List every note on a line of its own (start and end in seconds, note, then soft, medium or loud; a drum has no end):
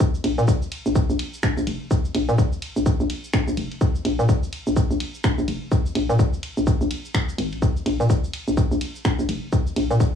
0.00 kick loud
0.00 shaker medium
0.15 shaker soft
0.24 0.35 A#1 loud
0.24 closed hi-hat medium
0.24 ride medium
0.38 0.46 A#2 loud
0.38 shaker soft
0.48 kick loud
0.48 shaker medium
0.62 shaker soft
0.72 closed hi-hat medium
0.72 ride medium
0.86 0.94 A#1 medium
0.86 shaker soft
0.95 kick loud
0.95 shaker medium
1.10 1.17 A#1 loud
1.10 shaker soft
1.19 closed hi-hat loud
1.19 ride medium
1.34 shaker soft
1.43 1.54 A#1 loud
1.43 finger snap loud
1.43 kick loud
1.43 shaker medium
1.57 1.65 A#1 loud
1.57 shaker soft
1.67 1.78 F1 medium
1.67 closed hi-hat medium
1.67 ride medium
1.91 kick loud
1.91 shaker medium
2.05 shaker soft
2.15 2.26 A#1 loud
2.15 closed hi-hat loud
2.15 ride medium
2.29 2.36 A#2 loud
2.29 shaker soft
2.38 kick loud
2.38 shaker medium
2.53 shaker soft
2.62 closed hi-hat loud
2.62 ride medium
2.76 2.84 A#1 medium
2.76 shaker soft
2.86 kick loud
2.86 shaker medium
3.00 3.08 A#1 loud
3.00 shaker soft
3.10 closed hi-hat loud
3.10 ride medium
3.24 shaker soft
3.34 3.45 A#1 loud
3.34 finger snap loud
3.34 kick loud
3.34 shaker medium
3.48 3.55 A#1 loud
3.48 shaker soft
3.57 3.69 F1 medium
3.57 closed hi-hat loud
3.57 ride medium
3.72 ride soft
3.81 kick loud
3.81 shaker medium
3.95 shaker soft
4.05 4.16 A#1 loud
4.05 closed hi-hat loud
4.05 ride medium
4.19 4.27 A#2 loud
4.19 shaker soft
4.29 kick loud
4.29 shaker medium
4.43 shaker soft
4.53 closed hi-hat loud
4.53 ride medium
4.67 4.75 A#1 medium
4.67 shaker soft
4.76 kick loud
4.76 shaker medium
4.91 4.98 A#1 loud
4.91 shaker soft
5.00 closed hi-hat loud
5.00 ride medium
5.14 shaker soft
5.24 5.35 A#1 loud
5.24 finger snap loud
5.24 kick loud
5.24 shaker medium
5.38 5.46 A#1 loud
5.38 shaker soft
5.48 5.59 F1 medium
5.48 closed hi-hat loud
5.48 ride medium
5.72 kick loud
5.72 shaker medium
5.86 shaker soft
5.95 6.07 A#1 loud
5.95 closed hi-hat loud
5.95 ride medium
6.10 6.17 A#2 loud
6.10 shaker soft
6.19 kick loud
6.19 shaker medium
6.34 shaker soft
6.43 closed hi-hat loud
6.43 ride medium
6.57 6.65 A#1 medium
6.57 shaker soft
6.67 kick loud
6.67 shaker medium
6.81 6.89 A#1 loud
6.81 shaker soft
6.91 closed hi-hat loud
6.91 ride medium
7.05 shaker soft
7.15 finger snap loud
7.15 kick loud
7.15 shaker medium
7.29 shaker soft
7.38 7.54 G#1 medium
7.38 closed hi-hat loud
7.38 ride medium
7.53 7.71 A#1 medium
7.53 ride soft
7.62 kick loud
7.62 shaker medium
7.76 shaker soft
7.86 7.97 A#1 loud
7.86 closed hi-hat medium
7.86 ride medium
8.00 8.08 A#2 loud
8.00 shaker soft
8.10 kick loud
8.10 shaker medium
8.24 shaker soft
8.34 closed hi-hat medium
8.34 ride medium
8.48 8.55 A#1 medium
8.48 shaker soft
8.57 kick loud
8.57 shaker medium
8.72 8.79 A#1 loud
8.72 shaker soft
8.81 closed hi-hat loud
8.81 ride medium
8.95 shaker soft
9.05 9.16 A#1 loud
9.05 finger snap loud
9.05 kick loud
9.05 shaker medium
9.19 9.27 A#1 loud
9.19 shaker soft
9.29 9.40 F1 medium
9.29 closed hi-hat medium
9.29 ride medium
9.53 kick loud
9.53 shaker medium
9.67 shaker soft
9.76 9.88 A#1 loud
9.76 closed hi-hat medium
9.76 ride medium
9.91 9.98 A#2 loud
9.91 shaker soft
10.00 kick loud
10.00 shaker medium